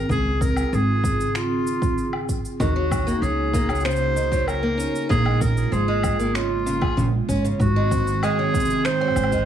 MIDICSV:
0, 0, Header, 1, 6, 480
1, 0, Start_track
1, 0, Tempo, 625000
1, 76, Time_signature, 4, 2, 24, 8
1, 7258, End_track
2, 0, Start_track
2, 0, Title_t, "Clarinet"
2, 0, Program_c, 0, 71
2, 0, Note_on_c, 0, 70, 97
2, 79, Note_off_c, 0, 70, 0
2, 85, Note_on_c, 0, 68, 98
2, 322, Note_on_c, 0, 70, 91
2, 334, Note_off_c, 0, 68, 0
2, 574, Note_on_c, 0, 68, 86
2, 585, Note_off_c, 0, 70, 0
2, 1045, Note_on_c, 0, 65, 77
2, 1056, Note_off_c, 0, 68, 0
2, 1760, Note_off_c, 0, 65, 0
2, 1997, Note_on_c, 0, 66, 94
2, 2473, Note_on_c, 0, 68, 90
2, 2485, Note_off_c, 0, 66, 0
2, 2951, Note_off_c, 0, 68, 0
2, 2955, Note_on_c, 0, 72, 107
2, 3435, Note_on_c, 0, 70, 100
2, 3446, Note_off_c, 0, 72, 0
2, 3912, Note_off_c, 0, 70, 0
2, 3916, Note_on_c, 0, 68, 106
2, 4158, Note_on_c, 0, 70, 96
2, 4170, Note_off_c, 0, 68, 0
2, 4396, Note_on_c, 0, 68, 87
2, 4407, Note_off_c, 0, 70, 0
2, 4880, Note_on_c, 0, 65, 86
2, 4892, Note_off_c, 0, 68, 0
2, 5598, Note_off_c, 0, 65, 0
2, 5842, Note_on_c, 0, 66, 99
2, 6325, Note_on_c, 0, 68, 95
2, 6337, Note_off_c, 0, 66, 0
2, 6799, Note_on_c, 0, 72, 108
2, 6811, Note_off_c, 0, 68, 0
2, 7258, Note_off_c, 0, 72, 0
2, 7258, End_track
3, 0, Start_track
3, 0, Title_t, "Ambient pad"
3, 0, Program_c, 1, 92
3, 0, Note_on_c, 1, 60, 78
3, 0, Note_on_c, 1, 68, 95
3, 68, Note_on_c, 1, 65, 77
3, 70, Note_on_c, 1, 49, 82
3, 1959, Note_off_c, 1, 68, 0
3, 1960, Note_off_c, 1, 60, 0
3, 1973, Note_off_c, 1, 65, 0
3, 1974, Note_off_c, 1, 49, 0
3, 1990, Note_on_c, 1, 66, 98
3, 1992, Note_on_c, 1, 49, 85
3, 1997, Note_on_c, 1, 58, 80
3, 1997, Note_on_c, 1, 63, 81
3, 3894, Note_off_c, 1, 66, 0
3, 3897, Note_off_c, 1, 58, 0
3, 3897, Note_off_c, 1, 63, 0
3, 3919, Note_on_c, 1, 56, 81
3, 3920, Note_on_c, 1, 58, 80
3, 3922, Note_on_c, 1, 65, 102
3, 5804, Note_off_c, 1, 49, 0
3, 5819, Note_off_c, 1, 58, 0
3, 5820, Note_off_c, 1, 65, 0
3, 5829, Note_on_c, 1, 51, 84
3, 5830, Note_on_c, 1, 60, 73
3, 5831, Note_on_c, 1, 66, 99
3, 7258, Note_off_c, 1, 51, 0
3, 7258, Note_off_c, 1, 56, 0
3, 7258, Note_off_c, 1, 60, 0
3, 7258, Note_off_c, 1, 66, 0
3, 7258, End_track
4, 0, Start_track
4, 0, Title_t, "Steel-string acoustic guitar"
4, 0, Program_c, 2, 25
4, 1996, Note_on_c, 2, 51, 73
4, 2104, Note_off_c, 2, 51, 0
4, 2118, Note_on_c, 2, 54, 68
4, 2345, Note_off_c, 2, 54, 0
4, 2355, Note_on_c, 2, 58, 69
4, 2470, Note_off_c, 2, 58, 0
4, 2479, Note_on_c, 2, 61, 66
4, 2706, Note_off_c, 2, 61, 0
4, 2721, Note_on_c, 2, 58, 95
4, 2827, Note_off_c, 2, 58, 0
4, 2839, Note_on_c, 2, 54, 66
4, 2946, Note_off_c, 2, 54, 0
4, 2954, Note_on_c, 2, 49, 73
4, 3183, Note_off_c, 2, 49, 0
4, 3195, Note_on_c, 2, 51, 68
4, 3304, Note_off_c, 2, 51, 0
4, 3315, Note_on_c, 2, 54, 69
4, 3543, Note_off_c, 2, 54, 0
4, 3553, Note_on_c, 2, 58, 67
4, 3668, Note_on_c, 2, 61, 70
4, 3669, Note_off_c, 2, 58, 0
4, 3900, Note_off_c, 2, 61, 0
4, 3911, Note_on_c, 2, 58, 97
4, 4021, Note_off_c, 2, 58, 0
4, 4034, Note_on_c, 2, 56, 68
4, 4143, Note_off_c, 2, 56, 0
4, 4156, Note_on_c, 2, 49, 68
4, 4384, Note_off_c, 2, 49, 0
4, 4392, Note_on_c, 2, 53, 72
4, 4502, Note_off_c, 2, 53, 0
4, 4516, Note_on_c, 2, 56, 75
4, 4744, Note_off_c, 2, 56, 0
4, 4756, Note_on_c, 2, 58, 64
4, 4870, Note_off_c, 2, 58, 0
4, 4874, Note_on_c, 2, 61, 73
4, 4983, Note_off_c, 2, 61, 0
4, 5116, Note_on_c, 2, 49, 72
4, 5230, Note_off_c, 2, 49, 0
4, 5233, Note_on_c, 2, 68, 67
4, 5342, Note_off_c, 2, 68, 0
4, 5353, Note_on_c, 2, 49, 69
4, 5423, Note_off_c, 2, 49, 0
4, 5595, Note_on_c, 2, 61, 69
4, 5704, Note_off_c, 2, 61, 0
4, 5717, Note_on_c, 2, 49, 64
4, 5825, Note_off_c, 2, 49, 0
4, 5961, Note_on_c, 2, 56, 71
4, 6073, Note_off_c, 2, 56, 0
4, 6081, Note_on_c, 2, 60, 65
4, 6306, Note_off_c, 2, 60, 0
4, 6322, Note_on_c, 2, 56, 90
4, 6427, Note_off_c, 2, 56, 0
4, 6442, Note_on_c, 2, 54, 75
4, 6547, Note_off_c, 2, 54, 0
4, 6564, Note_on_c, 2, 48, 68
4, 6788, Note_off_c, 2, 48, 0
4, 6802, Note_on_c, 2, 51, 72
4, 6907, Note_off_c, 2, 51, 0
4, 6922, Note_on_c, 2, 54, 88
4, 7033, Note_off_c, 2, 54, 0
4, 7161, Note_on_c, 2, 56, 63
4, 7258, Note_off_c, 2, 56, 0
4, 7258, End_track
5, 0, Start_track
5, 0, Title_t, "Upright bass"
5, 0, Program_c, 3, 32
5, 72, Note_on_c, 3, 37, 93
5, 481, Note_off_c, 3, 37, 0
5, 558, Note_on_c, 3, 32, 85
5, 1804, Note_off_c, 3, 32, 0
5, 1995, Note_on_c, 3, 39, 94
5, 2402, Note_off_c, 3, 39, 0
5, 2472, Note_on_c, 3, 37, 81
5, 3721, Note_off_c, 3, 37, 0
5, 3917, Note_on_c, 3, 34, 92
5, 4324, Note_off_c, 3, 34, 0
5, 4393, Note_on_c, 3, 32, 82
5, 5352, Note_off_c, 3, 32, 0
5, 5356, Note_on_c, 3, 34, 87
5, 5505, Note_off_c, 3, 34, 0
5, 5595, Note_on_c, 3, 32, 67
5, 5744, Note_off_c, 3, 32, 0
5, 5833, Note_on_c, 3, 32, 91
5, 6962, Note_off_c, 3, 32, 0
5, 7036, Note_on_c, 3, 32, 84
5, 7258, Note_off_c, 3, 32, 0
5, 7258, End_track
6, 0, Start_track
6, 0, Title_t, "Drums"
6, 75, Note_on_c, 9, 36, 104
6, 83, Note_on_c, 9, 82, 31
6, 151, Note_off_c, 9, 36, 0
6, 160, Note_off_c, 9, 82, 0
6, 315, Note_on_c, 9, 36, 96
6, 322, Note_on_c, 9, 82, 71
6, 391, Note_off_c, 9, 36, 0
6, 399, Note_off_c, 9, 82, 0
6, 433, Note_on_c, 9, 77, 63
6, 439, Note_on_c, 9, 82, 37
6, 510, Note_off_c, 9, 77, 0
6, 516, Note_off_c, 9, 82, 0
6, 563, Note_on_c, 9, 82, 27
6, 640, Note_off_c, 9, 82, 0
6, 796, Note_on_c, 9, 36, 88
6, 804, Note_on_c, 9, 82, 74
6, 872, Note_off_c, 9, 36, 0
6, 881, Note_off_c, 9, 82, 0
6, 925, Note_on_c, 9, 82, 43
6, 1002, Note_off_c, 9, 82, 0
6, 1037, Note_on_c, 9, 26, 75
6, 1042, Note_on_c, 9, 82, 31
6, 1114, Note_off_c, 9, 26, 0
6, 1119, Note_off_c, 9, 82, 0
6, 1283, Note_on_c, 9, 82, 77
6, 1359, Note_off_c, 9, 82, 0
6, 1397, Note_on_c, 9, 36, 107
6, 1404, Note_on_c, 9, 82, 43
6, 1474, Note_off_c, 9, 36, 0
6, 1481, Note_off_c, 9, 82, 0
6, 1520, Note_on_c, 9, 82, 29
6, 1597, Note_off_c, 9, 82, 0
6, 1636, Note_on_c, 9, 77, 61
6, 1713, Note_off_c, 9, 77, 0
6, 1758, Note_on_c, 9, 36, 52
6, 1759, Note_on_c, 9, 82, 73
6, 1835, Note_off_c, 9, 36, 0
6, 1836, Note_off_c, 9, 82, 0
6, 1883, Note_on_c, 9, 82, 46
6, 1960, Note_off_c, 9, 82, 0
6, 1998, Note_on_c, 9, 36, 108
6, 2002, Note_on_c, 9, 82, 32
6, 2075, Note_off_c, 9, 36, 0
6, 2078, Note_off_c, 9, 82, 0
6, 2237, Note_on_c, 9, 36, 100
6, 2239, Note_on_c, 9, 77, 70
6, 2244, Note_on_c, 9, 82, 76
6, 2313, Note_off_c, 9, 36, 0
6, 2315, Note_off_c, 9, 77, 0
6, 2321, Note_off_c, 9, 82, 0
6, 2365, Note_on_c, 9, 82, 39
6, 2442, Note_off_c, 9, 82, 0
6, 2482, Note_on_c, 9, 82, 31
6, 2559, Note_off_c, 9, 82, 0
6, 2715, Note_on_c, 9, 36, 90
6, 2722, Note_on_c, 9, 82, 77
6, 2792, Note_off_c, 9, 36, 0
6, 2799, Note_off_c, 9, 82, 0
6, 2834, Note_on_c, 9, 77, 68
6, 2839, Note_on_c, 9, 82, 19
6, 2881, Note_off_c, 9, 82, 0
6, 2881, Note_on_c, 9, 82, 22
6, 2911, Note_off_c, 9, 77, 0
6, 2920, Note_off_c, 9, 82, 0
6, 2920, Note_on_c, 9, 82, 26
6, 2957, Note_on_c, 9, 26, 71
6, 2963, Note_off_c, 9, 82, 0
6, 2963, Note_on_c, 9, 82, 31
6, 3001, Note_off_c, 9, 82, 0
6, 3001, Note_on_c, 9, 82, 35
6, 3034, Note_off_c, 9, 26, 0
6, 3042, Note_off_c, 9, 82, 0
6, 3042, Note_on_c, 9, 82, 37
6, 3118, Note_off_c, 9, 82, 0
6, 3201, Note_on_c, 9, 82, 77
6, 3278, Note_off_c, 9, 82, 0
6, 3316, Note_on_c, 9, 36, 64
6, 3322, Note_on_c, 9, 82, 46
6, 3392, Note_off_c, 9, 36, 0
6, 3399, Note_off_c, 9, 82, 0
6, 3438, Note_on_c, 9, 77, 60
6, 3443, Note_on_c, 9, 82, 29
6, 3515, Note_off_c, 9, 77, 0
6, 3520, Note_off_c, 9, 82, 0
6, 3684, Note_on_c, 9, 82, 72
6, 3761, Note_off_c, 9, 82, 0
6, 3805, Note_on_c, 9, 82, 46
6, 3882, Note_off_c, 9, 82, 0
6, 3917, Note_on_c, 9, 36, 109
6, 3927, Note_on_c, 9, 82, 32
6, 3993, Note_off_c, 9, 36, 0
6, 4004, Note_off_c, 9, 82, 0
6, 4038, Note_on_c, 9, 77, 69
6, 4115, Note_off_c, 9, 77, 0
6, 4156, Note_on_c, 9, 36, 101
6, 4159, Note_on_c, 9, 82, 69
6, 4233, Note_off_c, 9, 36, 0
6, 4236, Note_off_c, 9, 82, 0
6, 4281, Note_on_c, 9, 82, 43
6, 4358, Note_off_c, 9, 82, 0
6, 4401, Note_on_c, 9, 82, 29
6, 4478, Note_off_c, 9, 82, 0
6, 4634, Note_on_c, 9, 77, 69
6, 4636, Note_on_c, 9, 36, 90
6, 4639, Note_on_c, 9, 82, 75
6, 4710, Note_off_c, 9, 77, 0
6, 4712, Note_off_c, 9, 36, 0
6, 4716, Note_off_c, 9, 82, 0
6, 4760, Note_on_c, 9, 82, 41
6, 4836, Note_off_c, 9, 82, 0
6, 4878, Note_on_c, 9, 26, 67
6, 4883, Note_on_c, 9, 82, 31
6, 4954, Note_off_c, 9, 26, 0
6, 4960, Note_off_c, 9, 82, 0
6, 5122, Note_on_c, 9, 82, 72
6, 5198, Note_off_c, 9, 82, 0
6, 5236, Note_on_c, 9, 36, 106
6, 5236, Note_on_c, 9, 77, 67
6, 5313, Note_off_c, 9, 36, 0
6, 5313, Note_off_c, 9, 77, 0
6, 5363, Note_on_c, 9, 82, 40
6, 5439, Note_off_c, 9, 82, 0
6, 5597, Note_on_c, 9, 36, 56
6, 5602, Note_on_c, 9, 82, 69
6, 5674, Note_off_c, 9, 36, 0
6, 5679, Note_off_c, 9, 82, 0
6, 5724, Note_on_c, 9, 82, 47
6, 5800, Note_off_c, 9, 82, 0
6, 5837, Note_on_c, 9, 36, 102
6, 5842, Note_on_c, 9, 82, 30
6, 5914, Note_off_c, 9, 36, 0
6, 5919, Note_off_c, 9, 82, 0
6, 6077, Note_on_c, 9, 36, 87
6, 6081, Note_on_c, 9, 82, 65
6, 6154, Note_off_c, 9, 36, 0
6, 6158, Note_off_c, 9, 82, 0
6, 6200, Note_on_c, 9, 82, 40
6, 6277, Note_off_c, 9, 82, 0
6, 6318, Note_on_c, 9, 77, 73
6, 6324, Note_on_c, 9, 82, 30
6, 6395, Note_off_c, 9, 77, 0
6, 6401, Note_off_c, 9, 82, 0
6, 6558, Note_on_c, 9, 36, 86
6, 6565, Note_on_c, 9, 82, 64
6, 6604, Note_off_c, 9, 82, 0
6, 6604, Note_on_c, 9, 82, 54
6, 6635, Note_off_c, 9, 36, 0
6, 6644, Note_off_c, 9, 82, 0
6, 6644, Note_on_c, 9, 82, 44
6, 6683, Note_off_c, 9, 82, 0
6, 6683, Note_on_c, 9, 82, 43
6, 6759, Note_off_c, 9, 82, 0
6, 6796, Note_on_c, 9, 26, 69
6, 6801, Note_on_c, 9, 82, 31
6, 6873, Note_off_c, 9, 26, 0
6, 6878, Note_off_c, 9, 82, 0
6, 6913, Note_on_c, 9, 77, 33
6, 6972, Note_off_c, 9, 77, 0
6, 6972, Note_on_c, 9, 77, 39
6, 7034, Note_off_c, 9, 77, 0
6, 7034, Note_on_c, 9, 77, 51
6, 7040, Note_on_c, 9, 82, 73
6, 7093, Note_off_c, 9, 77, 0
6, 7093, Note_on_c, 9, 77, 63
6, 7116, Note_off_c, 9, 82, 0
6, 7158, Note_on_c, 9, 36, 56
6, 7161, Note_on_c, 9, 82, 42
6, 7170, Note_off_c, 9, 77, 0
6, 7235, Note_off_c, 9, 36, 0
6, 7237, Note_off_c, 9, 82, 0
6, 7258, End_track
0, 0, End_of_file